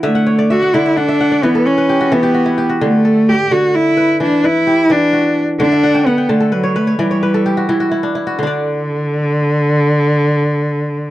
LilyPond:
<<
  \new Staff \with { instrumentName = "Kora" } { \time 12/8 \key d \major \tempo 4. = 86 << { e''16 fis''16 cis''16 d''16 e''16 fis''16 d''16 e''16 fis''16 e''16 fis''16 d''16 b'16 a'16 cis''16 b'16 g'16 fis'16 a'16 g'16 fis'16 e'16 g'16 fis'16~ | fis'16 r1 r4. r16 | r16 e''16 fis''16 g''16 fis''16 g''16 a''16 a'16 b'16 cis''16 b'16 cis''16 d''16 cis''16 b'16 a'16 g'16 fis'16 e'16 fis'16 e'16 d'16 e'16 fis'16~ | fis'16 r1 r4. r16 | } \\ { fis'8 r1 r4. | r8 a'4. r8 b'4 b'8 g'4 fis'4~ | fis'8 r1 r4. | <d d' d''>1. | } >> }
  \new Staff \with { instrumentName = "Kora" } { \clef bass \time 12/8 \key d \major d4 r8 d4 r8 e4 r8 e4 r8 | d4 r8 d4 r8 e4 r8 e4 r8 | d4 r8 d4 r8 e4 r8 e4 r8 | r1. | }
  \new Staff \with { instrumentName = "Cello" } { \time 12/8 \key d \major a4 fis'8 e'8 d'4 b8 cis'4 b4 r8 | a4 g'8 fis'8 e'4 d'8 e'4 d'4 r8 | d'4 b8 a8 fis8 a8 g2 r4 | d1. | }
>>